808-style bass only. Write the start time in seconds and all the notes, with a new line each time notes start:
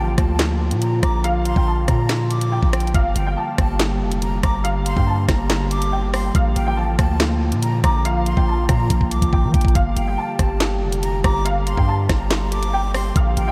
Already playing: A1
0.18 D2
0.71 A#2
1.03 A#1
1.56 A#1
1.88 A#2
2.63 A#1
2.94 G1
3.16 G1
3.58 G1
4.01 F1
4.43 G1
4.97 G2
5.29 G1
6.35 A#1
6.56 A1
6.99 D2
7.52 A#2
7.84 A#1
8.37 A#1
8.69 A#2
8.90 A#1
9.11 C2
9.22 A1
9.43 F3
9.54 A#1
9.75 G1
9.97 G1
10.39 G1
10.82 F1
11.24 G1
11.77 G2
12.09 G1
13.16 A#1
13.37 A1